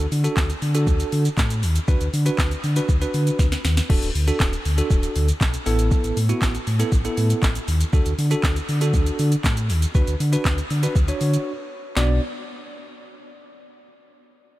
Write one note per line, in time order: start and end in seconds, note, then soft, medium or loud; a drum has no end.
0.12 0.28 D3 loud
0.12 open hi-hat medium
0.12 shaker medium
0.24 0.49 D4 medium
0.24 0.49 F#4 medium
0.24 0.49 A4 loud
0.24 closed hi-hat medium
0.24 shaker medium
0.37 0.53 D2 loud
0.37 kick loud
0.37 snare loud
0.37 clap loud
0.37 shaker medium
0.50 closed hi-hat medium
0.50 shaker medium
0.62 0.89 D3 medium
0.62 open hi-hat medium
0.62 shaker soft
0.74 1.24 D4 medium
0.74 1.24 F#4 medium
0.74 1.24 A4 loud
0.74 closed hi-hat medium
0.74 shaker medium
0.87 1.04 D2 loud
0.87 kick loud
0.87 shaker medium
1.00 closed hi-hat medium
1.00 shaker medium
1.12 1.29 D3 loud
1.12 open hi-hat medium
1.12 shaker soft
1.25 closed hi-hat medium
1.25 shaker medium
1.38 1.65 A2 medium
1.38 kick loud
1.38 snare loud
1.38 clap loud
1.38 shaker medium
1.50 closed hi-hat medium
1.50 shaker medium
1.63 1.79 D#2 medium
1.63 open hi-hat medium
1.63 shaker medium
1.76 closed hi-hat medium
1.76 shaker medium
1.88 1.96 D2 loud
1.88 2.07 D4 medium
1.88 2.07 F#4 medium
1.88 2.07 B4 loud
1.88 kick loud
1.88 shaker medium
2.01 2.09 D2 loud
2.01 closed hi-hat medium
2.01 shaker medium
2.13 2.30 D3 loud
2.13 open hi-hat medium
2.13 shaker medium
2.26 2.51 D4 medium
2.26 2.51 F#4 medium
2.26 2.51 B4 loud
2.26 closed hi-hat medium
2.26 shaker medium
2.38 2.55 D2 loud
2.38 kick loud
2.38 snare loud
2.38 clap loud
2.38 shaker medium
2.51 closed hi-hat medium
2.51 shaker medium
2.64 2.80 D3 loud
2.64 open hi-hat medium
2.64 shaker soft
2.76 2.89 D4 medium
2.76 2.89 F#4 medium
2.76 2.89 B4 loud
2.76 closed hi-hat medium
2.76 shaker medium
2.89 3.05 D2 loud
2.89 kick loud
2.89 shaker medium
3.01 3.45 D4 medium
3.01 3.45 F#4 medium
3.01 3.45 B4 loud
3.01 closed hi-hat medium
3.01 shaker medium
3.14 3.31 D3 loud
3.14 open hi-hat medium
3.14 shaker soft
3.27 closed hi-hat medium
3.27 shaker medium
3.39 3.56 D2 medium
3.39 kick loud
3.39 snare medium
3.39 shaker medium
3.52 snare medium
3.52 closed hi-hat medium
3.52 shaker medium
3.65 3.81 D#2 loud
3.65 snare loud
3.65 open hi-hat medium
3.65 shaker medium
3.77 snare loud
3.77 closed hi-hat medium
3.77 shaker medium
3.90 3.98 D1 loud
3.90 4.08 D4 medium
3.90 4.08 F#4 medium
3.90 4.09 A4 medium
3.90 kick loud
3.90 crash medium
4.02 4.11 D1 loud
4.02 closed hi-hat medium
4.02 shaker medium
4.15 4.31 D2 loud
4.15 open hi-hat medium
4.15 shaker medium
4.27 4.52 D4 medium
4.27 4.52 F#4 medium
4.27 4.52 A4 loud
4.27 closed hi-hat medium
4.27 shaker medium
4.40 4.57 D1 loud
4.40 kick loud
4.40 snare loud
4.40 clap loud
4.40 shaker medium
4.53 closed hi-hat medium
4.53 shaker medium
4.65 4.82 D2 loud
4.65 open hi-hat medium
4.65 shaker soft
4.78 5.27 D4 medium
4.78 5.27 F#4 medium
4.78 5.28 A4 loud
4.78 closed hi-hat medium
4.78 shaker medium
4.90 5.07 D1 loud
4.90 kick loud
4.90 shaker medium
5.03 closed hi-hat medium
5.03 shaker medium
5.16 5.32 D2 loud
5.16 open hi-hat medium
5.16 shaker soft
5.28 closed hi-hat medium
5.28 shaker medium
5.41 5.57 B1 loud
5.41 kick loud
5.41 snare medium
5.41 clap loud
5.41 shaker medium
5.54 closed hi-hat medium
5.54 shaker medium
5.66 5.91 A1 loud
5.66 6.17 B3 medium
5.66 6.17 E4 medium
5.66 6.17 A4 loud
5.66 open hi-hat medium
5.66 shaker medium
5.79 closed hi-hat medium
5.79 shaker medium
5.91 kick loud
5.91 shaker medium
6.04 6.12 A1 loud
6.04 closed hi-hat medium
6.04 shaker medium
6.17 6.33 A2 loud
6.17 open hi-hat medium
6.17 shaker medium
6.29 6.54 B3 medium
6.29 6.54 E4 medium
6.29 6.54 F#4 loud
6.29 closed hi-hat medium
6.29 shaker medium
6.42 6.58 A1 loud
6.42 kick loud
6.42 snare loud
6.42 clap loud
6.42 shaker medium
6.55 closed hi-hat medium
6.55 shaker medium
6.67 6.84 A2 loud
6.67 open hi-hat medium
6.67 shaker medium
6.79 6.92 B3 medium
6.79 6.92 E4 medium
6.79 6.92 A4 loud
6.79 closed hi-hat medium
6.79 shaker medium
6.92 7.09 A1 loud
6.92 kick loud
6.92 shaker medium
7.05 7.48 B3 medium
7.05 7.48 E4 medium
7.05 7.48 A4 loud
7.05 closed hi-hat medium
7.05 shaker medium
7.17 7.34 A2 loud
7.17 open hi-hat medium
7.17 shaker medium
7.30 closed hi-hat medium
7.30 shaker medium
7.43 7.59 A1 loud
7.43 kick loud
7.43 snare loud
7.43 clap loud
7.43 shaker medium
7.55 closed hi-hat medium
7.55 shaker medium
7.68 7.84 D#2 loud
7.68 open hi-hat medium
7.68 shaker medium
7.81 closed hi-hat medium
7.81 shaker medium
7.93 8.01 D2 loud
7.93 8.12 D4 medium
7.93 8.12 F#4 medium
7.93 8.12 A4 loud
7.93 kick loud
7.93 shaker medium
8.06 8.14 D2 loud
8.06 closed hi-hat medium
8.06 shaker medium
8.18 8.35 D3 loud
8.18 open hi-hat medium
8.18 shaker medium
8.31 8.56 D4 medium
8.31 8.56 F#4 medium
8.31 8.56 A4 loud
8.31 closed hi-hat medium
8.31 shaker medium
8.43 8.60 D2 loud
8.43 kick loud
8.43 snare loud
8.43 clap loud
8.43 shaker medium
8.56 closed hi-hat medium
8.56 shaker medium
8.69 8.95 D3 medium
8.69 open hi-hat medium
8.69 shaker soft
8.81 9.31 D4 medium
8.81 9.31 F#4 medium
8.81 9.31 A4 loud
8.81 closed hi-hat medium
8.81 shaker medium
8.94 9.10 D2 loud
8.94 kick loud
8.94 shaker medium
9.07 closed hi-hat medium
9.07 shaker medium
9.19 9.36 D3 loud
9.19 open hi-hat medium
9.19 shaker medium
9.32 closed hi-hat medium
9.32 shaker medium
9.44 9.71 A2 medium
9.44 kick loud
9.44 snare loud
9.44 clap loud
9.44 shaker medium
9.57 closed hi-hat medium
9.57 shaker medium
9.70 9.86 D#2 medium
9.70 open hi-hat medium
9.70 shaker medium
9.82 closed hi-hat medium
9.82 shaker medium
9.95 10.03 D2 loud
9.95 10.13 D4 medium
9.95 10.13 F#4 medium
9.95 10.14 B4 loud
9.95 kick loud
9.95 shaker medium
10.07 10.16 D2 loud
10.07 closed hi-hat medium
10.07 shaker medium
10.20 10.37 D3 loud
10.20 open hi-hat medium
10.20 shaker medium
10.33 10.57 D4 medium
10.33 10.57 F#4 medium
10.33 10.58 B4 medium
10.33 closed hi-hat medium
10.33 shaker medium
10.45 10.62 D2 loud
10.45 kick loud
10.45 snare medium
10.45 clap loud
10.45 shaker medium
10.58 closed hi-hat medium
10.58 shaker medium
10.70 10.87 D3 medium
10.70 open hi-hat medium
10.70 shaker soft
10.83 10.95 D4 medium
10.83 10.96 F#4 medium
10.83 10.96 B4 loud
10.83 closed hi-hat medium
10.83 shaker medium
10.96 11.12 D2 loud
10.96 kick loud
10.96 shaker medium
11.08 11.51 D4 medium
11.08 11.52 F#4 medium
11.08 11.52 C#5 loud
11.08 closed hi-hat medium
11.08 shaker medium
11.21 11.37 D3 loud
11.21 open hi-hat medium
11.21 shaker soft
11.34 closed hi-hat medium
11.34 shaker medium
11.97 12.20 B1 loud
11.97 12.20 B3 medium
11.97 12.20 D4 medium
11.97 12.20 F#4 medium
11.97 12.20 D5 loud
11.97 snare loud
11.97 clap medium